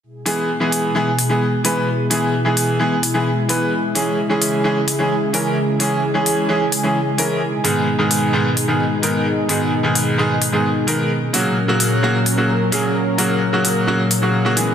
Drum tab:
HH |-o-o-o-o|-o-o-o-o|-o-o-o-o|-o-o-o-o|

HH |-o-o-o-o|-o-o-o-o|-o-o-o-o|-o-o-o-o|